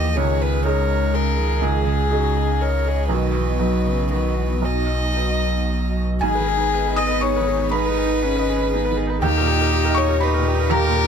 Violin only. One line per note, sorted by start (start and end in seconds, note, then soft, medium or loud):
0.00 0.18 D#5 medium
0.16 0.43 C#5 medium
0.41 0.65 B4 medium
0.66 1.16 C#5 medium
1.14 1.65 A#4 medium
1.64 2.63 G#4 medium
2.61 3.09 C#5 medium
3.09 4.08 B4 medium
4.12 4.66 B4 soft
4.65 6.03 D#5 soft
6.22 6.99 G#4 medium
6.98 7.23 D#5 medium
7.22 7.72 C#5 medium
7.73 8.95 B4 medium
9.23 9.99 G4 medium
9.97 10.24 C#5 medium
10.23 10.73 B4 medium
10.72 11.07 A#4 medium